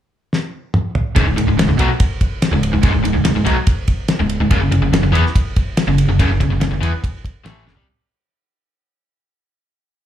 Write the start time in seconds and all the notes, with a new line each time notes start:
0.33 snare
0.74 mid tom
0.95 floor tom
1.16 C#1 C#2 G#2, kick, ride
1.27 C#1 C#2 G#2
1.36 C#1 C#2 G#2, ride
1.47 C#1 C#2 G#2
1.58 C#1 C#2 G#2, snare, ride
1.69 C#1 C#2 G#2
1.79 B1 B2 F#3, ride
2.00 kick, ride
2.21 kick, ride
2.42 snare, ride
2.52 C#1 C#2 G#2
2.63 ride
2.73 C#1 C#2 G#2
2.83 C#1 C#2 G#2, kick, ride
2.93 C#1 C#2 G#2
3.03 C#1 C#2 G#2, ride
3.13 C#1 C#2 G#2
3.24 C#1 C#2 G#2, snare, ride
3.35 C#1 C#2 G#2
3.45 B1 B2 F#3, ride
3.67 kick, ride
3.88 kick, ride
4.08 snare, ride
4.20 C#1 C#2 G#2
4.29 ride
4.40 C#1 C#2 G#2
4.51 F#1 F#2 C#3, kick, ride
4.61 F#1 F#2 C#3
4.70 F#1 F#2 C#3, ride
4.81 F#1 F#2 C#3
4.91 F#1 F#2 C#3, snare, ride
5.02 F#1 F#2 C#3
5.12 E2 E3 B3, ride
5.26 snare
5.36 kick, ride
5.56 kick, ride
5.77 snare, ride
5.87 F#1 F#2 C#3
5.98 ride
6.07 F#1 F#2 C#3
6.19 F#1 F#2 C#3, kick, ride
6.28 F#1 F#2 C#3
6.40 F#1 F#2 C#3, kick, ride
6.49 F#1 F#2 C#3
6.59 F#1 F#2 C#3, snare, ride
6.70 F#1 F#2 C#3
6.81 E2 E3 B3, ride
7.04 kick, ride
7.25 kick, ride
7.44 A1 A2 E3 A3, snare, ride
7.65 F#1 F#2 C#3, snare
7.75 C2 C3 G3, floor tom